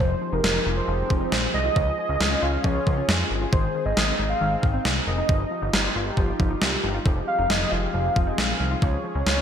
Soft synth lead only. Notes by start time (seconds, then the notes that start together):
0.00 C5
0.33 A#4
0.77 C5
1.32 C5
1.54 D#5
2.43 F5
2.64 C#5
3.53 C5
3.86 D#5
4.30 F5
5.07 D#5
7.28 F5
7.39 F5
7.50 D#5
7.72 F5
8.27 D#5
8.38 F5
8.82 C#5